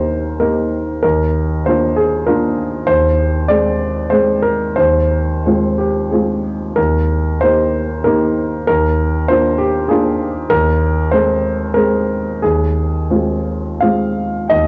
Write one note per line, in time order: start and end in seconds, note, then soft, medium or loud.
0.00 1.04 D#2 soft
0.00 0.37 A#3 soft
0.00 0.37 D#4 soft
0.00 0.37 G4 soft
0.00 0.40 A#4 medium
0.00 0.40 C5 medium
0.40 0.99 A#3 soft
0.40 0.99 D#4 soft
0.40 1.00 G4 soft
0.40 1.01 A#4 soft
1.03 1.65 D#2 soft
1.03 1.66 A#4 medium
1.66 2.23 A#3 soft
1.66 2.23 D4 soft
1.66 2.24 F4 soft
1.66 1.97 C5 medium
1.96 2.27 G#4 medium
2.27 2.84 A#3 soft
2.27 2.84 D4 soft
2.27 2.84 F4 soft
2.27 2.87 A#4 medium
2.87 3.47 D#2 soft
2.87 3.48 C5 medium
3.48 4.07 G#3 soft
3.48 4.08 C4 soft
3.48 4.08 G#4 soft
3.48 4.11 D5 medium
4.10 4.73 G#3 soft
4.10 4.73 C4 soft
4.10 4.73 G#4 soft
4.10 4.43 C5 medium
4.42 4.76 A#4 medium
4.76 5.43 D#2 soft
4.76 5.78 C5 medium
5.46 6.09 G#3 soft
5.46 6.09 C4 soft
5.46 6.09 F4 soft
5.78 6.12 G4 soft
6.12 6.74 G#3 soft
6.12 6.74 C4 soft
6.12 6.74 F4 soft
6.12 6.77 G#4 soft
6.76 7.39 D#2 soft
6.76 7.40 A#4 medium
7.41 8.01 A#3 soft
7.41 8.02 D#4 soft
7.41 8.02 G4 soft
7.41 8.04 C5 medium
8.04 8.63 A#3 soft
8.04 8.63 D#4 soft
8.04 8.63 G4 soft
8.04 8.66 A#4 medium
8.67 9.27 D#2 soft
8.67 9.28 A#4 medium
9.28 9.86 A#3 soft
9.28 9.86 D4 soft
9.28 9.86 F4 soft
9.28 9.58 C5 medium
9.58 9.89 G4 medium
9.88 10.46 A#3 soft
9.88 10.47 D4 soft
9.88 10.47 F4 soft
9.88 10.50 G#4 medium
10.50 11.10 D#2 soft
10.50 11.11 A#4 medium
11.11 11.72 G#3 soft
11.11 11.72 C4 soft
11.11 11.73 G#4 soft
11.11 11.75 C5 medium
11.74 12.39 G#3 soft
11.74 12.39 C4 soft
11.74 12.39 G#4 soft
11.74 12.42 A#4 medium
12.42 13.10 D#2 soft
12.42 13.82 G#4 medium
13.11 13.78 G#3 soft
13.11 13.78 C4 soft
13.11 13.79 F4 soft
13.81 14.48 G#3 soft
13.81 14.48 C4 soft
13.81 14.48 F4 soft
13.81 14.51 F5 medium
14.50 14.67 D#2 soft
14.50 14.67 D#5 medium